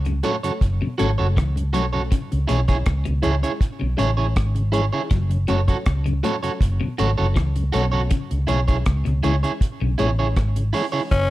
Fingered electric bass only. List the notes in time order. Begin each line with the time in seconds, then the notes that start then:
Already playing: C#2
0.62 F#1
1.00 G#1
1.21 F#1
1.37 C#2
1.76 B1
2.33 C#2
2.50 B1
2.87 C#2
3.08 C#2
3.26 C#2
3.82 B1
3.99 A1
4.37 G#1
5.11 F#1
5.50 F#1
5.87 C#2
6.61 F#1
7.00 G#1
7.20 F#1
7.37 C#2
7.75 B1
8.32 C#2
8.50 B1
8.87 C#2
9.07 C#2
9.25 C#2
9.82 B1
10.00 A1
10.37 G#1
11.12 F#1